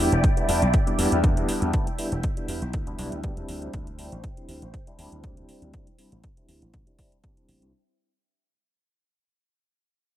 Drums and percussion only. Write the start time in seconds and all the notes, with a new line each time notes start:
0.12 closed hi-hat
0.24 kick, closed hi-hat
0.37 closed hi-hat
0.49 open hi-hat
0.62 closed hi-hat
0.74 kick, closed hi-hat
0.87 closed hi-hat
0.99 open hi-hat
1.12 closed hi-hat
1.24 kick, closed hi-hat
1.37 closed hi-hat
1.49 open hi-hat
1.62 closed hi-hat
1.73 kick, closed hi-hat
1.87 closed hi-hat
1.99 open hi-hat
2.12 closed hi-hat
2.23 kick, closed hi-hat
2.37 closed hi-hat
2.48 open hi-hat
2.62 closed hi-hat
2.73 kick, closed hi-hat
2.87 closed hi-hat
2.99 open hi-hat
3.12 closed hi-hat
3.24 kick, closed hi-hat
3.37 closed hi-hat
3.49 open hi-hat
3.62 closed hi-hat
3.74 kick, closed hi-hat
3.87 closed hi-hat
3.99 open hi-hat
4.12 closed hi-hat
4.24 kick, closed hi-hat
4.37 closed hi-hat
4.49 open hi-hat
4.62 closed hi-hat
4.74 kick, closed hi-hat
4.87 closed hi-hat
4.99 open hi-hat
5.12 closed hi-hat
5.24 kick, closed hi-hat
5.37 closed hi-hat
5.49 open hi-hat
5.62 closed hi-hat
5.74 kick, closed hi-hat
5.87 closed hi-hat
5.99 open hi-hat
6.12 closed hi-hat
6.24 kick, closed hi-hat
6.37 closed hi-hat
6.49 open hi-hat
6.62 closed hi-hat
6.74 kick, closed hi-hat
6.87 closed hi-hat
6.99 kick, open hi-hat
7.12 closed hi-hat
7.24 kick, closed hi-hat
7.37 closed hi-hat
7.49 open hi-hat
7.62 closed hi-hat